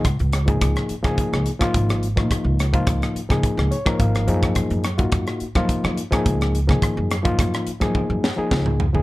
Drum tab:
HH |xxxxxxxxx-xxxxx-|x-xxxxxxx-x-xxxx|xxxxxxxxx-xxxxx-|x-xxxxxx--------|
SD |r-r-rr-r-r-r-r-r|r-r-rr-r-r-r-r-r|r-r-rr-r-r-r-r-r|r-r-rr-r--o-o---|
T1 |----------------|----------------|----------------|--------o-------|
T2 |----------------|----------------|----------------|-------------o--|
FT |----------------|----------------|----------------|--------------oo|
BD |o--oo--oo--oo--o|o--oo--oo--oo--o|o--oo--oo--oo--o|o--oo--oo---o---|